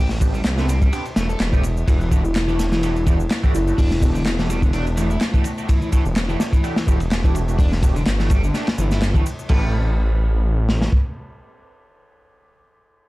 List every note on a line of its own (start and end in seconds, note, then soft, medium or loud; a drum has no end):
0.00 0.41 A1 loud
0.09 snare soft
0.09 shaker soft
0.21 0.33 B3 medium
0.21 0.33 C4 medium
0.21 0.33 D4 medium
0.21 0.33 G4 medium
0.21 kick medium
0.21 ride medium
0.21 shaker medium
0.34 0.39 G3 loud
0.34 shaker soft
0.44 0.88 C2 medium
0.44 snare loud
0.44 clap loud
0.44 ride medium
0.44 shaker soft
0.58 0.67 A3 loud
0.58 0.75 B3 medium
0.58 0.75 C4 medium
0.58 0.75 D4 medium
0.58 0.75 B4 medium
0.58 snare medium
0.58 shaker soft
0.69 0.79 C4 medium
0.69 ride medium
0.69 shaker medium
0.82 0.91 G3 medium
0.82 kick loud
0.82 shaker soft
0.93 1.05 B3 loud
0.93 1.05 C4 medium
0.93 1.05 D4 medium
0.93 1.03 G4 loud
0.93 1.05 G4 loud
0.93 ride medium
0.93 shaker soft
1.05 ride soft
1.05 shaker soft
1.16 1.35 E1 medium
1.16 1.27 A3 medium
1.16 snare medium
1.16 ride medium
1.16 shaker medium
1.29 1.38 A4 medium
1.29 shaker soft
1.40 1.84 E1 medium
1.40 snare loud
1.40 clap loud
1.40 ride medium
1.40 shaker soft
1.53 1.62 A3 loud
1.53 1.63 B3 medium
1.53 1.63 C4 medium
1.53 1.63 D4 medium
1.53 1.63 G4 loud
1.53 kick medium
1.53 shaker soft
1.63 ride medium
1.63 shaker medium
1.77 shaker soft
1.88 3.26 E1 loud
1.88 1.99 E3 medium
1.88 kick loud
1.88 ride loud
1.88 shaker soft
2.00 2.09 E3 medium
2.00 shaker soft
2.11 2.22 E3 loud
2.11 2.24 A3 medium
2.11 2.24 D4 medium
2.11 2.24 F#4 medium
2.11 2.24 G4 medium
2.11 kick loud
2.11 ride medium
2.11 shaker medium
2.24 2.34 E4 medium
2.24 shaker soft
2.36 snare loud
2.36 clap loud
2.36 ride medium
2.36 shaker soft
2.48 2.57 E3 loud
2.48 2.66 A3 medium
2.48 2.66 D4 medium
2.48 2.66 F#4 medium
2.48 2.66 G4 medium
2.48 shaker soft
2.59 snare medium
2.59 ride medium
2.59 shaker medium
2.72 3.05 E3 medium
2.72 snare soft
2.72 shaker soft
2.83 2.95 A3 loud
2.83 2.95 D4 medium
2.83 2.95 F#4 medium
2.83 2.95 G4 loud
2.83 ride medium
2.83 shaker soft
2.96 shaker soft
3.06 3.17 E3 loud
3.06 3.19 A3 medium
3.06 3.19 D4 medium
3.06 3.19 F#4 medium
3.06 3.19 G4 medium
3.06 kick loud
3.06 ride medium
3.06 shaker medium
3.20 shaker soft
3.31 snare loud
3.31 clap loud
3.31 ride medium
3.31 shaker soft
3.43 3.52 E3 loud
3.43 3.61 A3 loud
3.43 3.61 D4 medium
3.43 3.61 F#4 medium
3.43 3.61 G4 loud
3.43 kick medium
3.43 shaker soft
3.54 3.73 F#1 medium
3.54 3.63 E4 medium
3.54 ride medium
3.54 shaker medium
3.67 3.78 A3 medium
3.67 3.78 D4 medium
3.67 3.74 E4 medium
3.67 3.78 F#4 medium
3.67 3.78 G4 medium
3.67 shaker soft
3.78 5.17 E1 loud
3.78 3.89 D4 loud
3.78 kick loud
3.78 open hi-hat medium
3.78 shaker soft
3.91 snare soft
3.91 shaker soft
4.02 4.14 A3 medium
4.02 4.10 B3 medium
4.02 4.14 D4 medium
4.02 4.14 F#4 medium
4.02 4.14 G4 medium
4.02 kick medium
4.02 ride medium
4.02 shaker medium
4.15 4.20 D3 loud
4.15 4.22 B3 medium
4.15 shaker soft
4.26 snare loud
4.26 clap loud
4.26 ride medium
4.26 shaker soft
4.39 4.48 E3 loud
4.39 4.56 A3 medium
4.39 4.56 D4 medium
4.39 4.56 F#4 medium
4.39 4.56 G4 medium
4.39 snare soft
4.39 shaker soft
4.49 4.60 G3 medium
4.49 ride medium
4.49 shaker medium
4.62 4.72 D3 medium
4.62 kick medium
4.62 shaker soft
4.73 4.86 A3 loud
4.73 4.86 D4 medium
4.73 4.84 D4 loud
4.73 4.86 F#4 medium
4.73 4.86 G4 loud
4.73 ride medium
4.73 shaker soft
4.87 ride soft
4.87 shaker soft
4.97 5.08 E3 medium
4.97 5.10 A3 medium
4.97 5.06 A3 medium
4.97 5.10 D4 medium
4.97 5.10 F#4 medium
4.97 5.10 G4 medium
4.97 ride medium
4.97 shaker medium
5.10 5.17 A3 medium
5.10 5.19 E4 medium
5.10 shaker soft
5.21 snare loud
5.21 clap loud
5.21 ride medium
5.21 shaker soft
5.34 5.43 E3 loud
5.34 5.52 A3 loud
5.34 5.51 D4 medium
5.34 5.52 F#4 medium
5.34 5.52 G4 loud
5.34 kick loud
5.34 shaker soft
5.44 ride medium
5.44 shaker medium
5.58 5.68 A3 medium
5.58 5.68 D4 medium
5.58 5.68 F#4 medium
5.58 5.68 G4 medium
5.58 shaker soft
5.69 5.80 E3 medium
5.69 kick loud
5.69 ride medium
5.69 shaker soft
5.82 5.91 E3 medium
5.82 shaker soft
5.92 6.03 E3 loud
5.92 6.05 A3 medium
5.92 6.05 D4 medium
5.92 6.05 F#4 medium
5.92 6.05 G4 medium
5.92 kick medium
5.92 ride medium
5.92 shaker medium
6.06 6.36 E1 medium
6.06 shaker soft
6.16 snare loud
6.16 clap loud
6.16 ride medium
6.16 shaker soft
6.29 6.38 E3 loud
6.29 6.47 A3 medium
6.29 6.47 D4 medium
6.29 6.47 F#4 medium
6.29 6.47 G4 loud
6.29 shaker soft
6.40 snare loud
6.40 ride medium
6.40 shaker medium
6.53 6.86 E3 medium
6.53 kick medium
6.53 shaker soft
6.64 6.76 A3 loud
6.64 6.76 D4 medium
6.64 6.76 F#4 medium
6.64 6.76 G4 loud
6.64 ride medium
6.64 shaker soft
6.76 snare medium
6.76 ride medium
6.76 shaker soft
6.87 8.02 E1 loud
6.87 6.98 E3 loud
6.87 7.00 A3 medium
6.87 7.00 D4 medium
6.87 7.00 F#4 medium
6.87 7.00 G4 medium
6.87 kick medium
6.87 shaker medium
7.00 ride medium
7.00 shaker soft
7.11 snare loud
7.11 clap loud
7.11 ride medium
7.11 shaker soft
7.24 7.33 E3 loud
7.24 7.42 A3 loud
7.24 7.42 D4 medium
7.24 7.42 F#4 medium
7.24 7.42 G4 loud
7.24 kick medium
7.24 shaker soft
7.35 ride medium
7.35 shaker medium
7.48 7.59 A3 medium
7.48 7.59 D4 medium
7.48 7.59 F#4 medium
7.48 7.59 G4 medium
7.48 shaker soft
7.59 7.70 D4 loud
7.59 kick loud
7.59 open hi-hat medium
7.59 shaker soft
7.72 snare soft
7.72 shaker soft
7.83 7.95 A3 medium
7.83 7.95 D4 medium
7.83 7.95 F#4 medium
7.83 7.95 G4 medium
7.83 kick medium
7.83 ride medium
7.83 shaker medium
7.96 8.01 D3 loud
7.96 shaker soft
8.06 8.50 G1 medium
8.06 snare loud
8.06 clap loud
8.06 ride medium
8.06 shaker soft
8.19 8.29 E3 loud
8.19 8.37 A3 medium
8.19 8.37 D4 medium
8.19 8.37 F#4 medium
8.19 8.37 G4 medium
8.19 snare medium
8.19 shaker soft
8.30 8.41 G3 medium
8.30 kick medium
8.30 ride medium
8.30 shaker medium
8.43 8.52 D3 medium
8.43 shaker soft
8.54 8.67 A3 loud
8.54 8.65 D4 loud
8.54 8.67 D4 medium
8.54 8.67 F#4 medium
8.54 8.67 G4 loud
8.54 snare soft
8.54 ride medium
8.54 shaker soft
8.67 snare loud
8.67 ride medium
8.67 shaker soft
8.78 9.22 G1 medium
8.78 8.89 E3 medium
8.78 shaker medium
8.91 9.00 E4 medium
8.91 snare medium
8.91 ride medium
8.91 shaker soft
9.02 snare loud
9.02 clap loud
9.02 ride medium
9.02 shaker soft
9.15 9.24 E3 loud
9.15 9.25 A3 medium
9.15 9.25 D4 medium
9.15 9.25 F#4 medium
9.15 9.25 G4 medium
9.15 kick loud
9.15 shaker soft
9.26 ride medium
9.26 shaker medium
9.39 shaker soft
9.49 10.89 A1 loud
9.49 9.72 A3 medium
9.49 12.55 C4 medium
9.49 12.55 D4 medium
9.49 12.55 G4 medium
9.49 12.55 B4 medium
9.49 kick loud
9.49 crash medium
10.69 snare medium
10.82 snare medium
10.92 kick medium